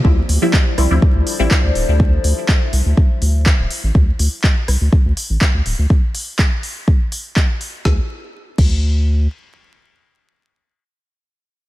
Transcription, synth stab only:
X:1
M:4/4
L:1/16
Q:"Swing 16ths" 1/4=123
K:Dm
V:1 name="Synth stab"
[F,G,CE]3 [F,G,CE] z2 [F,G,CE] [F,G,CE]4 [F,G,CE] z4 | z16 | z16 | z16 |
z16 | z16 |]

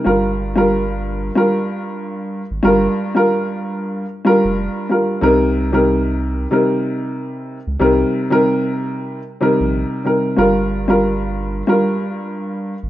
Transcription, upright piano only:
X:1
M:4/4
L:1/16
Q:"Swing 16ths" 1/4=93
K:Gm
V:1 name="Upright piano"
[G,,G,FB]3 [G,,G,FB]4- [G,,G,FB] [G,,G,FB]6 z2 | [G,,G,FB]3 [G,,G,FB]6 z [G,,G,FB]4 [G,,G,FB]2 | [C,G,EB]3 [C,G,EB]4- [C,G,EB] [C,G,EB]6 z2 | [C,G,EB]3 [C,G,EB]6 z [C,G,EB]4 [C,G,EB]2 |
[G,,G,FB]3 [G,,G,FB]4- [G,,G,FB] [G,,G,FB]6 z2 |]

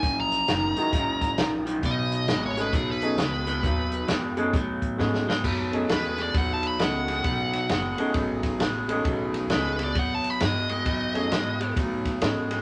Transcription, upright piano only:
X:1
M:4/4
L:1/8
Q:"Swing" 1/4=133
K:Bmix
V:1 name="Upright piano"
z3 [G,^A,DEF]3 z2 | z3 [A,B,CDG] z [A,B,CDG] z2 | z3 [A,B,CDG] z2 [A,B,CDG] z | z [A,B,CDG]3 z2 [A,B,CDG]2- |
[A,B,CDG] z2 [A,B,CDG]3 z [A,B,CDG]- | [A,B,CDG]2 [A,B,CDG] z4 z | z [A,B,CDG] z4 [B,CDGA]2 |]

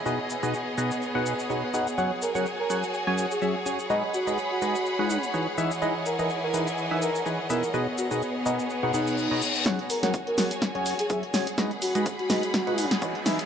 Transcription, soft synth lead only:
X:1
M:4/4
L:1/16
Q:"Swing 16ths" 1/4=125
K:G#m
V:1 name="Soft synth lead"
z16 | z2 A A z A z4 z G G z3 | z2 F z2 F6 z4 z | z2 A A z A z4 A z3 A z |
z2 F F z6 D3 z3 | z2 A A z A z4 z G G z3 | z2 F z2 F6 z4 z |]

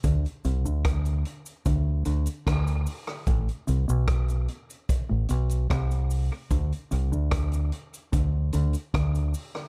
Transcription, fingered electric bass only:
X:1
M:4/4
L:1/16
Q:1/4=74
K:Am
V:1 name="Fingered electric bass" clef=bass
D,, z C,, D,,3 z2 D,,2 D,, z D,,2 z2 | A,,, z C,, B,,,3 z3 A,,, B,,,2 C,,3 z | D,, z C,, D,,3 z2 D,,2 D,, z D,,2 z2 |]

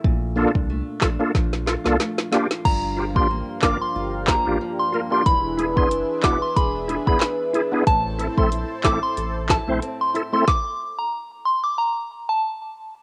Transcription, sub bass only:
X:1
M:4/4
L:1/16
Q:"Swing 16ths" 1/4=92
K:Gdor
V:1 name="Sub bass" clef=bass
B,,,3 C,,2 z B,,, z B,,,3 C,, z4 | G,,,3 A,,,2 z G,,, z G,,,3 A,,, z4 | E,,,3 ^F,,,2 z E,,, z E,,,3 F,,, z4 | A,,,3 B,,,2 z A,,, z A,,,3 B,,, z4 |
z16 |]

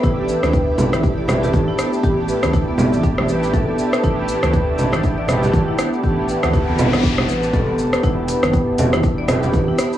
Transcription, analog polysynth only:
X:1
M:4/4
L:1/8
Q:"Swing 16ths" 1/4=120
K:Ador
V:1 name="Analog polysynth"
[A,DEG]4- [A,DEG] [A,DEG]3 | [A,DEG]4- [A,DEG] [A,DEG]3 | [A,DEG]4- [A,DEG] [A,DEG]3 | [A,DEG]4- [A,DEG] z3 |
[B,DEG]4- [B,DEG] [B,DEG]3 |]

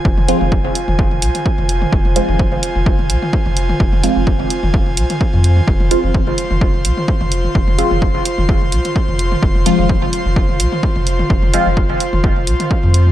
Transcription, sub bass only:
X:1
M:4/4
L:1/16
Q:"Swing 16ths" 1/4=128
K:Fm
V:1 name="Sub bass" clef=bass
F,,,2 z F,,,2 z2 F,,,3 C,, z2 F,,,2 z | F,,,2 z F,,,2 z2 F,,,3 C,, z2 F,,,2 z | F,,,2 z F,,,2 z2 F,,,3 C,, z2 F,,2 z | F,,,2 z F,,,2 z2 F,,,3 C,, z2 F,,,2 z |
F,,,2 z F,,,2 z2 F,,,3 C,, z2 F,,,2 z | F,,,2 z F,,,2 z2 F,,,3 C,, z2 F,,,2 z | F,,,2 z F,,,2 z2 F,,,3 C,, z2 F,,2 z |]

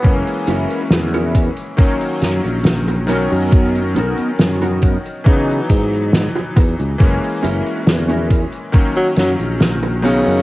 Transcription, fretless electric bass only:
X:1
M:4/4
L:1/16
Q:1/4=69
K:D#phr
V:1 name="Fretless electric bass" clef=bass
F,,, z F,,, z E,,3 z3 F,, A,,,3 B,,, F,,- | F,,2 B,,, z F,,3 z C, z G,,3 z E,, C,, | F,,, z F,,, z E,,3 z3 F,, A,,,3 B,,, F,, |]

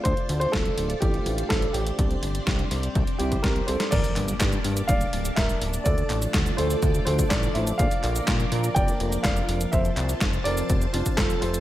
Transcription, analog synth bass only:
X:1
M:4/4
L:1/8
Q:1/4=124
K:Gdor
V:1 name="Analog synth bass" clef=bass
D,, D,, D,,, D,,, A,,, A,,, A,,, A,,, | C,, G,,, C,, C,, C,, C,, C,, C,, | G,,, G,,, G,, G,, D,,, D,,, D,,, D,,, | D,, A,,, D,, D,, D,, D,, A,,, A,,, |
B,,, B,,, B,, B,, F,,, F,,, F,,, F,,, | F,,, C,, F,,, F,,, F,,, F,,, F,,, F,,, |]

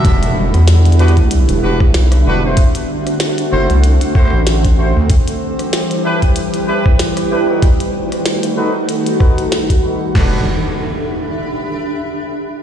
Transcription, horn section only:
X:1
M:4/4
L:1/16
Q:"Swing 16ths" 1/4=95
K:Em
V:1 name="Horn section"
[DFGe]2 z4 [DFGB] z3 [DFGB] z3 [DFGB] [EFAc] | z6 [EFAc] z3 [EFAc] z3 [EFAc] z | z6 [DEGB] z3 [DEGB] z3 [DEGB] [^DFAB] | z6 [^DFAB] z3 [DFAB] z3 [DFAB] z |
[DFGB]2 z12 z2 |]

